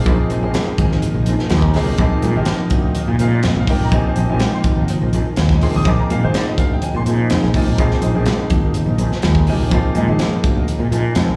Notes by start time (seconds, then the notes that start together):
Already playing: F3 A#3 D#4 F5
0.06 A#1 F3 A#3 C4 D#4 G#4, kick, closed hi-hat
0.30 A#1 F3 C4 D#4 G#4 D#5, closed hi-hat, muted conga
0.43 A#1 F3 A#3 C4 D#4 G#4
0.54 snare, closed hi-hat, high conga
0.67 muted fretless electric bass stroke, muted clean electric guitar stroke
0.78 G#1 G#5, muted clean electric guitar stroke, kick, closed hi-hat, high conga
0.92 muted clean electric guitar stroke, snare
1.02 closed hi-hat, muted conga, low conga
1.14 A#1, muted clean electric guitar stroke
1.26 A#1 F3 C4 D#4, closed hi-hat
1.30 G#4
1.39 muted clean electric guitar stroke, snare
1.50 D#2 F3 C4 D#4 G#4, snare, closed hi-hat, muted conga, high conga
1.62 kick
1.74 F3 A#3 C4 D#4 G#4, muted clean electric guitar stroke, snare, open hi-hat
1.88 A#1, muted clean electric guitar stroke
1.98 A#1 F3 A#3 C4 D#4 G#4, kick, closed hi-hat, muted conga
2.12 muted fretless electric bass stroke
2.22 A#2 F3 C4 D#4 G#4, closed hi-hat, muted conga, high conga
2.36 G#1 F3 A#3 C4 D#4 G4 G#4
2.45 muted clean electric guitar stroke, snare, closed hi-hat
2.61 muted clean electric guitar stroke, muted fretless electric bass stroke
2.70 D2, muted clean electric guitar stroke, kick, closed hi-hat
2.86 muted clean electric guitar stroke
2.95 closed hi-hat, muted conga
3.08 A#2, muted clean electric guitar stroke
3.19 A#2 F3 C4 D#4 G#4 F5, closed hi-hat
3.33 D5, muted clean electric guitar stroke
3.43 F2 F3 C4 D#4 G#4, snare, closed hi-hat, muted conga, high conga
3.48 D#5
3.56 A#1
3.60 F5
3.67 F3 A#3 C4 D#4 A#4 G5, muted clean electric guitar stroke, kick, open hi-hat, high conga
3.81 A#1, muted clean electric guitar stroke
3.85 A#5
3.92 A#1 F3 A#3 C4 D#4 G4 G#4 G#5, kick, closed hi-hat
4.08 C5
4.16 A#1 F3 C4 D#4 G#4 D#5, closed hi-hat
4.29 A#1 F3 A#3 C4 D#4 G4 G#4 G#5
4.40 G5, snare, closed hi-hat, high conga
4.53 C6, muted fretless electric bass stroke, muted clean electric guitar stroke
4.64 G#1, muted clean electric guitar stroke, kick, closed hi-hat, high conga
4.78 muted clean electric guitar stroke
4.88 closed hi-hat, muted conga, low conga
5.02 A#1, muted clean electric guitar stroke
5.13 A#1 F3 C4 D#4 G#4, closed hi-hat
5.26 muted fretless electric bass stroke, muted clean electric guitar stroke
5.36 D#2 F3 C4 D#4 G#4, snare, closed hi-hat, high conga
5.49 G#5, kick, snare, high conga
5.61 F3 A#3 C4 D#4 G#4 C6, muted clean electric guitar stroke, open hi-hat, low conga
5.75 A#1 D#6, muted clean electric guitar stroke, low conga
5.85 A#1 F3 A#3 C4 D#4 G#4 D6, kick, closed hi-hat
6.00 A#5, muted fretless electric bass stroke
6.10 A#2 F3 C4 D#4 G#4 F5, closed hi-hat, muted conga, high conga
6.22 G#1 F3 A#3 C4 D#4 G#4 C5
6.34 D5, muted clean electric guitar stroke, snare, closed hi-hat
6.47 D#5, muted fretless electric bass stroke, muted clean electric guitar stroke
6.58 D2 F5, muted clean electric guitar stroke, kick, closed hi-hat
6.72 G5, muted clean electric guitar stroke
6.82 G#5, closed hi-hat, muted conga
6.94 A#2 C6, muted clean electric guitar stroke
7.06 A#2 F3 C4 D#4 G#4, closed hi-hat
7.20 muted clean electric guitar stroke
7.30 F2 F3 C4 D#4 G#4, snare, closed hi-hat, muted conga, high conga
7.43 A#1, snare
7.54 F3 A#3 C4 D#4 F4 G#5, kick, open hi-hat, high conga
7.67 A#1, muted clean electric guitar stroke
7.78 A#1 F3 A#3 C4 D#4 G#4 F5, kick, closed hi-hat
7.91 snare
8.02 A#1 F3 C4 D#4 G#4 D#5, closed hi-hat, muted conga
8.14 A#1 F3 A#3 C4 D#4 G#4
8.26 snare, closed hi-hat, high conga
8.38 muted fretless electric bass stroke, muted clean electric guitar stroke
8.50 G#1, muted clean electric guitar stroke, kick, closed hi-hat, high conga
8.64 muted clean electric guitar stroke
8.74 closed hi-hat, muted conga, low conga
8.86 A#1, muted clean electric guitar stroke
8.98 A#1 F3 C4 D#4 G#4, closed hi-hat
9.11 muted fretless electric bass stroke, muted clean electric guitar stroke, snare
9.22 D#2 F3 C4 D#4 G#4, snare, closed hi-hat, muted conga, high conga
9.35 kick
9.47 F3 A#3 C4 D#4 G4 G#5, muted clean electric guitar stroke, open hi-hat
9.59 A#1, muted clean electric guitar stroke
9.71 A#1 F3 A#3 C4 D#4 F4 G#4 F5, kick, closed hi-hat
9.84 muted fretless electric bass stroke
9.95 A#2 F3 C4 D#4 G#4 D#5, closed hi-hat, muted conga, high conga
10.08 G#1 F3 A#3 C4 D#4 G#4
10.19 muted clean electric guitar stroke, snare, closed hi-hat
10.31 muted fretless electric bass stroke, muted clean electric guitar stroke
10.44 D2, muted clean electric guitar stroke, kick, closed hi-hat
10.56 muted clean electric guitar stroke
10.68 closed hi-hat, muted conga
10.79 A#2, muted clean electric guitar stroke
10.91 A#2 F3 C4 D#4 G#4, closed hi-hat
11.05 muted clean electric guitar stroke
11.15 F2 F3 C4 D#4 G#4, snare, closed hi-hat, muted conga, high conga
11.28 A#1